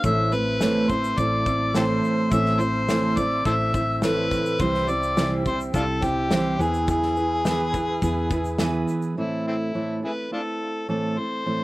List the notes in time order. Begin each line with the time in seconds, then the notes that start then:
0.04 A1 A2 E3 A3 C4 E4 C5 E5 A5 E6, kick, shaker
0.32 A3 C4 E4 B4 C5, shaker
0.60 A2 E3 A3 C4 E4 C5, snare, shaker
0.89 A3 C4 E4 C5, kick, shaker
1.04 shaker
1.18 A1 A3 C4 E4 C5 D5, kick, shaker
1.46 A3 C4 E4 C5, kick, shaker
1.74 A2 E3 A3 C4 E4 G4 A4 C5, snare, shaker
2.04 shaker
2.32 A1 A2 E3 A3 C4 E4 C5 E5, kick, shaker
2.46 snare
2.60 A3 C4 E4 C5, shaker
2.89 A2 E3 A3 C4 E4 C5, snare, shaker
3.17 A3 C4 E4 C5 D5, kick, shaker
3.45 A1 A3 C4 E4 A4 C5 E5, kick, shaker
3.74 A3 C4 E4 C5, kick, shaker
4.02 A2 E3 A3 C4 E4 B4, snare, shaker
4.31 kick, shaker
4.46 shaker
4.59 C2 C3 E3 G3 C4 E4 C5 G5, kick, shaker
4.74 snare
4.88 G3 C4 E4 D5, shaker
5.03 shaker
5.17 C3 E3 G3 C4 E4 C5, snare, shaker
5.45 G3 C4 E4 C5, kick, shaker
5.60 shaker
5.73 C2 G3 C4 D4 E4 F4 A4 C5, kick, shaker
6.02 G3 C4 E4 G4 C5, kick, shaker
6.31 C3 E3 G3 C4 E4 C5, snare, shaker
6.59 E2 E3 B3 E4 G#4 B4 G#5, shaker
6.74 shaker
6.88 G#4, kick, shaker
7.02 snare
7.16 E4 G#4 B4, shaker
7.45 E3 B3 E4 G#4 B4, snare, shaker
7.73 E4 G#4 B4, kick, shaker
8.02 E2 B3 E4 G#4 B4, kick, shaker
8.31 E4 G#4 B4, kick, shaker
8.45 shaker
8.58 E3 B3 E4 G#4 B4, snare, shaker
8.88 shaker
9.02 shaker
9.17 A2 E3 A3 C4 E4 A4
9.47 A3 C4 E4
9.74 A2 E3 A3 C4 E4 A4
10.02 A3 C4 E4 G#4 A4 B4
10.31 A3 C4 D4 E4 F4 A4
10.88 A2 E3 A3 C4 E4 A4
11.17 A3 C4 E4 A4 C5
11.46 A2 E3 A3 C4 E4 A4